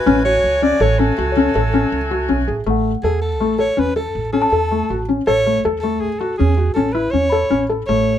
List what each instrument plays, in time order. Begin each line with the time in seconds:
Already playing: woodwind section A3 F#4 G#5, soprano saxophone B4
0.06 upright bass A1, felt piano C#4
0.25 felt piano F#4, soprano saxophone C#5
0.44 upright bass C#2
0.62 felt piano C#4, soprano saxophone D5
0.80 upright bass A1, felt piano A4, soprano saxophone C#5
0.99 felt piano C#4, soprano saxophone A4
1.18 upright bass C#2, felt piano F#4
1.32 celesta C#5
1.37 felt piano C#4
1.55 upright bass A1, felt piano A4
1.74 felt piano C#4
1.92 upright bass C#2
2.11 felt piano F#4
2.29 upright bass B1, felt piano C#4
2.48 upright bass A1, felt piano G#4
2.66 upright bass A1, felt piano A3, celesta F#5
3.03 upright bass E2, soprano saxophone G#4, felt piano A4
3.21 soprano saxophone A4
3.40 upright bass A1, felt piano A3
3.59 felt piano A4, soprano saxophone C#5
3.77 upright bass E2, felt piano C#4, soprano saxophone B4
3.96 soprano saxophone A4, felt piano A4
4.15 upright bass A1
4.32 felt piano C#4, soprano saxophone A4
4.42 celesta A5
4.52 upright bass E2, felt piano A4
4.71 felt piano A3
4.90 upright bass A1, felt piano F#4
5.09 felt piano C#4
5.26 upright bass A1, felt piano A4, soprano saxophone C#5
5.46 felt piano A3
5.65 upright bass E2, felt piano A4
5.80 felt piano A3, soprano saxophone A4
6.00 upright bass A1, soprano saxophone G#4
6.19 felt piano F#4, soprano saxophone A4
6.37 upright bass E2, felt piano C#4, soprano saxophone G#4
6.57 felt piano F#4
6.74 upright bass A1, felt piano C#4, soprano saxophone A4
6.92 felt piano E4, soprano saxophone B4
7.11 upright bass E2, felt piano C#4, soprano saxophone C#5
7.30 felt piano A4, celesta B5
7.50 upright bass A1, felt piano C#4
7.69 felt piano A4
7.86 upright bass A1, felt piano A3, soprano saxophone C#5